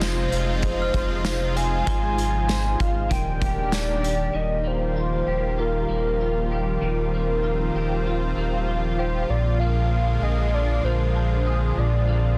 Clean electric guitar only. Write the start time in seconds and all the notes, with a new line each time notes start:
Already playing: F3 F4
0.01 C5
0.32 F4
0.63 D#4
0.94 C5
1.25 F4
1.55 C5
1.86 G#3 C5
2.17 F4
2.47 C5
2.78 F4
3.09 D#3
3.40 G4
3.71 D4
4.02 G4
4.33 D#3
4.64 A#3
4.96 F4
5.27 G4
5.58 F4
5.89 A#3
6.20 F4
6.51 G4
6.81 D#3
7.14 A#3
7.43 F4
7.75 G4
8.06 F4
8.37 A#3
8.68 F4
8.98 G4
9.29 A#2
9.61 A#3
10.22 G#4
10.53 D4
10.85 A#3
11.15 D4
11.46 G#4
11.78 A#2
12.08 A#3